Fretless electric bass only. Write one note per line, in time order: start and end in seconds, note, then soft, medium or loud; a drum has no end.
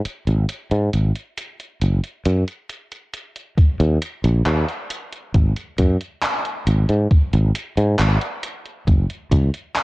0.05 muted fretless electric bass stroke soft
0.27 0.44 G#1 medium
0.71 0.89 G#2 medium
0.94 1.11 G#1 medium
1.82 1.99 F#1 medium
2.26 2.43 F#2 medium
3.58 muted fretless electric bass stroke soft
3.80 3.97 D#2 loud
4.24 4.41 A#1 loud
4.46 4.64 D#2 medium
5.34 5.52 G#1 medium
5.79 5.96 F#2 loud
6.67 6.84 G#1 medium
6.89 7.06 G#2 medium
7.11 muted fretless electric bass stroke soft
7.33 7.50 G#1 loud
7.77 7.94 G#2 loud
7.99 8.17 G#1 medium
8.87 9.05 F#1 medium
9.31 9.49 C#2 loud